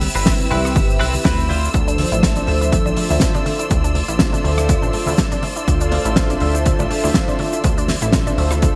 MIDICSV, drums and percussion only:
0, 0, Header, 1, 2, 480
1, 0, Start_track
1, 0, Tempo, 491803
1, 1700, Time_signature, 4, 2, 24, 8
1, 8545, End_track
2, 0, Start_track
2, 0, Title_t, "Drums"
2, 11, Note_on_c, 9, 46, 113
2, 17, Note_on_c, 9, 63, 87
2, 109, Note_off_c, 9, 46, 0
2, 115, Note_off_c, 9, 63, 0
2, 154, Note_on_c, 9, 82, 75
2, 252, Note_off_c, 9, 82, 0
2, 252, Note_on_c, 9, 38, 104
2, 257, Note_on_c, 9, 82, 63
2, 260, Note_on_c, 9, 36, 113
2, 349, Note_off_c, 9, 38, 0
2, 354, Note_off_c, 9, 82, 0
2, 358, Note_off_c, 9, 36, 0
2, 387, Note_on_c, 9, 63, 65
2, 390, Note_on_c, 9, 82, 50
2, 485, Note_off_c, 9, 63, 0
2, 488, Note_off_c, 9, 82, 0
2, 498, Note_on_c, 9, 46, 93
2, 501, Note_on_c, 9, 64, 93
2, 596, Note_off_c, 9, 46, 0
2, 599, Note_off_c, 9, 64, 0
2, 636, Note_on_c, 9, 37, 82
2, 645, Note_on_c, 9, 82, 70
2, 733, Note_off_c, 9, 37, 0
2, 735, Note_on_c, 9, 63, 93
2, 740, Note_on_c, 9, 36, 119
2, 742, Note_off_c, 9, 82, 0
2, 742, Note_on_c, 9, 82, 58
2, 832, Note_off_c, 9, 63, 0
2, 838, Note_off_c, 9, 36, 0
2, 839, Note_off_c, 9, 82, 0
2, 878, Note_on_c, 9, 82, 46
2, 976, Note_off_c, 9, 82, 0
2, 978, Note_on_c, 9, 64, 78
2, 983, Note_on_c, 9, 46, 107
2, 1076, Note_off_c, 9, 64, 0
2, 1081, Note_off_c, 9, 46, 0
2, 1112, Note_on_c, 9, 63, 61
2, 1117, Note_on_c, 9, 82, 69
2, 1209, Note_off_c, 9, 63, 0
2, 1215, Note_off_c, 9, 82, 0
2, 1220, Note_on_c, 9, 36, 116
2, 1222, Note_on_c, 9, 38, 106
2, 1235, Note_on_c, 9, 82, 65
2, 1318, Note_off_c, 9, 36, 0
2, 1319, Note_off_c, 9, 38, 0
2, 1332, Note_off_c, 9, 82, 0
2, 1349, Note_on_c, 9, 64, 80
2, 1360, Note_on_c, 9, 82, 48
2, 1447, Note_off_c, 9, 64, 0
2, 1457, Note_off_c, 9, 82, 0
2, 1463, Note_on_c, 9, 63, 90
2, 1468, Note_on_c, 9, 46, 93
2, 1561, Note_off_c, 9, 63, 0
2, 1566, Note_off_c, 9, 46, 0
2, 1603, Note_on_c, 9, 82, 76
2, 1698, Note_on_c, 9, 42, 75
2, 1700, Note_on_c, 9, 36, 111
2, 1701, Note_off_c, 9, 82, 0
2, 1703, Note_on_c, 9, 82, 62
2, 1795, Note_off_c, 9, 42, 0
2, 1798, Note_off_c, 9, 36, 0
2, 1800, Note_off_c, 9, 82, 0
2, 1834, Note_on_c, 9, 82, 53
2, 1836, Note_on_c, 9, 42, 53
2, 1932, Note_off_c, 9, 82, 0
2, 1934, Note_off_c, 9, 42, 0
2, 1934, Note_on_c, 9, 62, 47
2, 1935, Note_on_c, 9, 46, 103
2, 1940, Note_on_c, 9, 63, 85
2, 2032, Note_off_c, 9, 46, 0
2, 2032, Note_off_c, 9, 62, 0
2, 2037, Note_off_c, 9, 63, 0
2, 2072, Note_on_c, 9, 42, 56
2, 2081, Note_on_c, 9, 82, 75
2, 2170, Note_off_c, 9, 42, 0
2, 2176, Note_on_c, 9, 38, 113
2, 2179, Note_off_c, 9, 82, 0
2, 2180, Note_on_c, 9, 36, 114
2, 2185, Note_on_c, 9, 82, 66
2, 2190, Note_on_c, 9, 42, 86
2, 2274, Note_off_c, 9, 38, 0
2, 2277, Note_off_c, 9, 36, 0
2, 2282, Note_off_c, 9, 82, 0
2, 2287, Note_off_c, 9, 42, 0
2, 2301, Note_on_c, 9, 42, 54
2, 2304, Note_on_c, 9, 63, 61
2, 2309, Note_on_c, 9, 82, 47
2, 2398, Note_off_c, 9, 42, 0
2, 2401, Note_off_c, 9, 63, 0
2, 2406, Note_off_c, 9, 82, 0
2, 2413, Note_on_c, 9, 62, 67
2, 2418, Note_on_c, 9, 46, 94
2, 2419, Note_on_c, 9, 64, 74
2, 2510, Note_off_c, 9, 62, 0
2, 2516, Note_off_c, 9, 46, 0
2, 2517, Note_off_c, 9, 64, 0
2, 2552, Note_on_c, 9, 42, 67
2, 2562, Note_on_c, 9, 82, 82
2, 2650, Note_off_c, 9, 42, 0
2, 2653, Note_on_c, 9, 63, 80
2, 2659, Note_on_c, 9, 36, 115
2, 2660, Note_off_c, 9, 82, 0
2, 2660, Note_on_c, 9, 42, 78
2, 2665, Note_on_c, 9, 82, 59
2, 2750, Note_off_c, 9, 63, 0
2, 2757, Note_off_c, 9, 36, 0
2, 2758, Note_off_c, 9, 42, 0
2, 2763, Note_off_c, 9, 82, 0
2, 2788, Note_on_c, 9, 62, 47
2, 2797, Note_on_c, 9, 82, 53
2, 2886, Note_off_c, 9, 62, 0
2, 2892, Note_on_c, 9, 64, 76
2, 2895, Note_off_c, 9, 82, 0
2, 2895, Note_on_c, 9, 46, 104
2, 2990, Note_off_c, 9, 64, 0
2, 2992, Note_off_c, 9, 46, 0
2, 3022, Note_on_c, 9, 63, 67
2, 3025, Note_on_c, 9, 82, 78
2, 3120, Note_off_c, 9, 63, 0
2, 3123, Note_off_c, 9, 82, 0
2, 3123, Note_on_c, 9, 38, 102
2, 3133, Note_on_c, 9, 82, 64
2, 3136, Note_on_c, 9, 42, 90
2, 3139, Note_on_c, 9, 36, 112
2, 3220, Note_off_c, 9, 38, 0
2, 3230, Note_off_c, 9, 82, 0
2, 3234, Note_off_c, 9, 42, 0
2, 3237, Note_off_c, 9, 36, 0
2, 3265, Note_on_c, 9, 64, 79
2, 3268, Note_on_c, 9, 62, 69
2, 3270, Note_on_c, 9, 82, 51
2, 3363, Note_off_c, 9, 64, 0
2, 3365, Note_off_c, 9, 62, 0
2, 3368, Note_off_c, 9, 82, 0
2, 3376, Note_on_c, 9, 63, 86
2, 3377, Note_on_c, 9, 46, 95
2, 3473, Note_off_c, 9, 63, 0
2, 3475, Note_off_c, 9, 46, 0
2, 3507, Note_on_c, 9, 42, 53
2, 3516, Note_on_c, 9, 82, 74
2, 3604, Note_off_c, 9, 42, 0
2, 3610, Note_on_c, 9, 62, 53
2, 3614, Note_off_c, 9, 82, 0
2, 3615, Note_on_c, 9, 82, 63
2, 3617, Note_on_c, 9, 42, 77
2, 3619, Note_on_c, 9, 36, 109
2, 3707, Note_off_c, 9, 62, 0
2, 3713, Note_off_c, 9, 82, 0
2, 3714, Note_off_c, 9, 42, 0
2, 3716, Note_off_c, 9, 36, 0
2, 3750, Note_on_c, 9, 42, 50
2, 3757, Note_on_c, 9, 82, 54
2, 3848, Note_off_c, 9, 42, 0
2, 3852, Note_on_c, 9, 63, 80
2, 3854, Note_off_c, 9, 82, 0
2, 3856, Note_on_c, 9, 46, 92
2, 3950, Note_off_c, 9, 63, 0
2, 3954, Note_off_c, 9, 46, 0
2, 3986, Note_on_c, 9, 42, 69
2, 3996, Note_on_c, 9, 82, 74
2, 4084, Note_off_c, 9, 42, 0
2, 4090, Note_on_c, 9, 38, 110
2, 4094, Note_off_c, 9, 82, 0
2, 4095, Note_on_c, 9, 62, 74
2, 4099, Note_on_c, 9, 36, 112
2, 4099, Note_on_c, 9, 82, 73
2, 4102, Note_on_c, 9, 42, 82
2, 4188, Note_off_c, 9, 38, 0
2, 4192, Note_off_c, 9, 62, 0
2, 4196, Note_off_c, 9, 36, 0
2, 4196, Note_off_c, 9, 82, 0
2, 4200, Note_off_c, 9, 42, 0
2, 4226, Note_on_c, 9, 63, 63
2, 4234, Note_on_c, 9, 42, 48
2, 4241, Note_on_c, 9, 82, 49
2, 4324, Note_off_c, 9, 63, 0
2, 4332, Note_off_c, 9, 42, 0
2, 4335, Note_on_c, 9, 64, 78
2, 4339, Note_off_c, 9, 82, 0
2, 4341, Note_on_c, 9, 46, 89
2, 4433, Note_off_c, 9, 64, 0
2, 4439, Note_off_c, 9, 46, 0
2, 4465, Note_on_c, 9, 62, 46
2, 4469, Note_on_c, 9, 37, 93
2, 4471, Note_on_c, 9, 42, 60
2, 4471, Note_on_c, 9, 82, 73
2, 4562, Note_off_c, 9, 62, 0
2, 4567, Note_off_c, 9, 37, 0
2, 4568, Note_off_c, 9, 82, 0
2, 4569, Note_off_c, 9, 42, 0
2, 4577, Note_on_c, 9, 42, 88
2, 4579, Note_on_c, 9, 36, 106
2, 4579, Note_on_c, 9, 82, 69
2, 4581, Note_on_c, 9, 63, 81
2, 4674, Note_off_c, 9, 42, 0
2, 4677, Note_off_c, 9, 36, 0
2, 4677, Note_off_c, 9, 82, 0
2, 4679, Note_off_c, 9, 63, 0
2, 4712, Note_on_c, 9, 82, 50
2, 4809, Note_off_c, 9, 82, 0
2, 4814, Note_on_c, 9, 46, 108
2, 4816, Note_on_c, 9, 64, 67
2, 4911, Note_off_c, 9, 46, 0
2, 4913, Note_off_c, 9, 64, 0
2, 4938, Note_on_c, 9, 63, 66
2, 4945, Note_on_c, 9, 62, 83
2, 4952, Note_on_c, 9, 82, 74
2, 5036, Note_off_c, 9, 63, 0
2, 5043, Note_off_c, 9, 62, 0
2, 5050, Note_off_c, 9, 82, 0
2, 5055, Note_on_c, 9, 82, 68
2, 5056, Note_on_c, 9, 38, 108
2, 5060, Note_on_c, 9, 36, 111
2, 5064, Note_on_c, 9, 42, 85
2, 5153, Note_off_c, 9, 82, 0
2, 5154, Note_off_c, 9, 38, 0
2, 5157, Note_off_c, 9, 36, 0
2, 5161, Note_off_c, 9, 42, 0
2, 5190, Note_on_c, 9, 64, 88
2, 5190, Note_on_c, 9, 82, 46
2, 5191, Note_on_c, 9, 42, 55
2, 5288, Note_off_c, 9, 64, 0
2, 5288, Note_off_c, 9, 82, 0
2, 5289, Note_off_c, 9, 42, 0
2, 5292, Note_on_c, 9, 63, 77
2, 5296, Note_on_c, 9, 46, 91
2, 5299, Note_on_c, 9, 62, 55
2, 5389, Note_off_c, 9, 63, 0
2, 5394, Note_off_c, 9, 46, 0
2, 5397, Note_off_c, 9, 62, 0
2, 5428, Note_on_c, 9, 82, 72
2, 5432, Note_on_c, 9, 42, 52
2, 5526, Note_off_c, 9, 82, 0
2, 5530, Note_off_c, 9, 42, 0
2, 5541, Note_on_c, 9, 36, 108
2, 5541, Note_on_c, 9, 82, 72
2, 5544, Note_on_c, 9, 42, 82
2, 5638, Note_off_c, 9, 36, 0
2, 5638, Note_off_c, 9, 82, 0
2, 5642, Note_off_c, 9, 42, 0
2, 5667, Note_on_c, 9, 82, 54
2, 5671, Note_on_c, 9, 42, 56
2, 5765, Note_off_c, 9, 82, 0
2, 5769, Note_off_c, 9, 42, 0
2, 5773, Note_on_c, 9, 62, 82
2, 5776, Note_on_c, 9, 63, 76
2, 5777, Note_on_c, 9, 46, 97
2, 5871, Note_off_c, 9, 62, 0
2, 5874, Note_off_c, 9, 63, 0
2, 5875, Note_off_c, 9, 46, 0
2, 5907, Note_on_c, 9, 82, 79
2, 5910, Note_on_c, 9, 42, 63
2, 6005, Note_off_c, 9, 82, 0
2, 6008, Note_off_c, 9, 42, 0
2, 6012, Note_on_c, 9, 38, 112
2, 6018, Note_on_c, 9, 42, 84
2, 6021, Note_on_c, 9, 36, 107
2, 6024, Note_on_c, 9, 82, 71
2, 6110, Note_off_c, 9, 38, 0
2, 6115, Note_off_c, 9, 42, 0
2, 6118, Note_off_c, 9, 36, 0
2, 6121, Note_off_c, 9, 82, 0
2, 6145, Note_on_c, 9, 63, 59
2, 6149, Note_on_c, 9, 42, 51
2, 6149, Note_on_c, 9, 62, 51
2, 6155, Note_on_c, 9, 82, 49
2, 6243, Note_off_c, 9, 63, 0
2, 6246, Note_off_c, 9, 62, 0
2, 6247, Note_off_c, 9, 42, 0
2, 6249, Note_on_c, 9, 46, 86
2, 6252, Note_off_c, 9, 82, 0
2, 6260, Note_on_c, 9, 64, 86
2, 6347, Note_off_c, 9, 46, 0
2, 6357, Note_off_c, 9, 64, 0
2, 6391, Note_on_c, 9, 42, 63
2, 6396, Note_on_c, 9, 82, 88
2, 6489, Note_off_c, 9, 42, 0
2, 6494, Note_off_c, 9, 82, 0
2, 6496, Note_on_c, 9, 42, 87
2, 6499, Note_on_c, 9, 82, 65
2, 6500, Note_on_c, 9, 36, 108
2, 6504, Note_on_c, 9, 63, 84
2, 6594, Note_off_c, 9, 42, 0
2, 6597, Note_off_c, 9, 82, 0
2, 6598, Note_off_c, 9, 36, 0
2, 6601, Note_off_c, 9, 63, 0
2, 6631, Note_on_c, 9, 82, 50
2, 6637, Note_on_c, 9, 62, 85
2, 6728, Note_off_c, 9, 82, 0
2, 6734, Note_off_c, 9, 62, 0
2, 6740, Note_on_c, 9, 46, 109
2, 6743, Note_on_c, 9, 64, 71
2, 6838, Note_off_c, 9, 46, 0
2, 6840, Note_off_c, 9, 64, 0
2, 6875, Note_on_c, 9, 82, 86
2, 6879, Note_on_c, 9, 63, 63
2, 6972, Note_on_c, 9, 38, 111
2, 6973, Note_off_c, 9, 82, 0
2, 6977, Note_off_c, 9, 63, 0
2, 6979, Note_on_c, 9, 82, 64
2, 6980, Note_on_c, 9, 36, 110
2, 6983, Note_on_c, 9, 42, 93
2, 6986, Note_on_c, 9, 62, 54
2, 7069, Note_off_c, 9, 38, 0
2, 7077, Note_off_c, 9, 36, 0
2, 7077, Note_off_c, 9, 82, 0
2, 7080, Note_off_c, 9, 42, 0
2, 7084, Note_off_c, 9, 62, 0
2, 7105, Note_on_c, 9, 64, 92
2, 7111, Note_on_c, 9, 82, 52
2, 7203, Note_off_c, 9, 64, 0
2, 7209, Note_off_c, 9, 82, 0
2, 7210, Note_on_c, 9, 46, 83
2, 7216, Note_on_c, 9, 63, 84
2, 7308, Note_off_c, 9, 46, 0
2, 7313, Note_off_c, 9, 63, 0
2, 7347, Note_on_c, 9, 82, 81
2, 7353, Note_on_c, 9, 42, 50
2, 7445, Note_off_c, 9, 82, 0
2, 7450, Note_off_c, 9, 42, 0
2, 7453, Note_on_c, 9, 42, 90
2, 7459, Note_on_c, 9, 36, 110
2, 7460, Note_on_c, 9, 62, 82
2, 7461, Note_on_c, 9, 82, 67
2, 7551, Note_off_c, 9, 42, 0
2, 7556, Note_off_c, 9, 36, 0
2, 7558, Note_off_c, 9, 62, 0
2, 7558, Note_off_c, 9, 82, 0
2, 7589, Note_on_c, 9, 82, 52
2, 7593, Note_on_c, 9, 42, 52
2, 7687, Note_off_c, 9, 82, 0
2, 7691, Note_off_c, 9, 42, 0
2, 7693, Note_on_c, 9, 38, 66
2, 7695, Note_on_c, 9, 46, 100
2, 7697, Note_on_c, 9, 63, 85
2, 7791, Note_off_c, 9, 38, 0
2, 7792, Note_off_c, 9, 46, 0
2, 7794, Note_off_c, 9, 63, 0
2, 7818, Note_on_c, 9, 62, 55
2, 7826, Note_on_c, 9, 82, 80
2, 7827, Note_on_c, 9, 42, 63
2, 7915, Note_off_c, 9, 62, 0
2, 7924, Note_off_c, 9, 42, 0
2, 7924, Note_off_c, 9, 82, 0
2, 7930, Note_on_c, 9, 38, 112
2, 7936, Note_on_c, 9, 42, 90
2, 7938, Note_on_c, 9, 36, 108
2, 7942, Note_on_c, 9, 82, 63
2, 8028, Note_off_c, 9, 38, 0
2, 8034, Note_off_c, 9, 42, 0
2, 8036, Note_off_c, 9, 36, 0
2, 8040, Note_off_c, 9, 82, 0
2, 8068, Note_on_c, 9, 82, 51
2, 8071, Note_on_c, 9, 63, 60
2, 8073, Note_on_c, 9, 42, 52
2, 8166, Note_off_c, 9, 82, 0
2, 8169, Note_off_c, 9, 63, 0
2, 8170, Note_off_c, 9, 42, 0
2, 8176, Note_on_c, 9, 64, 82
2, 8179, Note_on_c, 9, 46, 86
2, 8274, Note_off_c, 9, 64, 0
2, 8276, Note_off_c, 9, 46, 0
2, 8301, Note_on_c, 9, 62, 75
2, 8303, Note_on_c, 9, 37, 80
2, 8308, Note_on_c, 9, 82, 75
2, 8311, Note_on_c, 9, 42, 64
2, 8399, Note_off_c, 9, 62, 0
2, 8401, Note_off_c, 9, 37, 0
2, 8406, Note_off_c, 9, 82, 0
2, 8409, Note_off_c, 9, 42, 0
2, 8415, Note_on_c, 9, 42, 87
2, 8418, Note_on_c, 9, 36, 111
2, 8420, Note_on_c, 9, 82, 72
2, 8421, Note_on_c, 9, 63, 88
2, 8512, Note_off_c, 9, 42, 0
2, 8515, Note_off_c, 9, 36, 0
2, 8518, Note_off_c, 9, 63, 0
2, 8518, Note_off_c, 9, 82, 0
2, 8545, End_track
0, 0, End_of_file